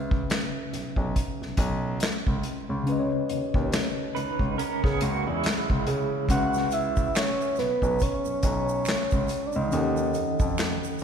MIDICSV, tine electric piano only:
0, 0, Header, 1, 2, 480
1, 0, Start_track
1, 0, Key_signature, 4, "minor"
1, 0, Tempo, 857143
1, 1599, Time_signature, 4, 2, 24, 8
1, 6180, End_track
2, 0, Start_track
2, 0, Title_t, "Tine electric piano"
2, 0, Program_c, 0, 4
2, 0, Control_c, 0, 64, 127
2, 0, Note_on_c, 0, 49, 65
2, 0, Note_on_c, 0, 61, 56
2, 0, Note_on_c, 0, 71, 62
2, 0, Note_on_c, 0, 76, 61
2, 1570, Note_off_c, 0, 49, 0
2, 1579, Note_off_c, 0, 61, 0
2, 1585, Note_on_c, 0, 49, 64
2, 1587, Note_off_c, 0, 71, 0
2, 1596, Note_off_c, 0, 76, 0
2, 1603, Note_on_c, 0, 61, 59
2, 1619, Note_on_c, 0, 71, 61
2, 1636, Note_on_c, 0, 75, 53
2, 1661, Note_off_c, 0, 75, 0
2, 1674, Note_on_c, 0, 73, 67
2, 3490, Note_off_c, 0, 49, 0
2, 3499, Note_off_c, 0, 61, 0
2, 3507, Note_off_c, 0, 71, 0
2, 3507, Note_on_c, 0, 49, 46
2, 3522, Note_on_c, 0, 61, 49
2, 3526, Control_c, 0, 64, 0
2, 3534, Note_off_c, 0, 73, 0
2, 3540, Note_on_c, 0, 71, 49
2, 3557, Note_on_c, 0, 76, 57
2, 3610, Control_c, 0, 64, 127
2, 5411, Note_off_c, 0, 49, 0
2, 5418, Note_off_c, 0, 61, 0
2, 5424, Note_on_c, 0, 51, 56
2, 5427, Note_off_c, 0, 71, 0
2, 5436, Note_off_c, 0, 76, 0
2, 5440, Note_on_c, 0, 61, 49
2, 5446, Control_c, 0, 64, 0
2, 5457, Note_on_c, 0, 69, 51
2, 5475, Note_on_c, 0, 78, 59
2, 5529, Control_c, 0, 64, 127
2, 6180, Note_off_c, 0, 51, 0
2, 6180, Note_off_c, 0, 61, 0
2, 6180, Note_off_c, 0, 69, 0
2, 6180, Note_off_c, 0, 78, 0
2, 6180, End_track
0, 0, End_of_file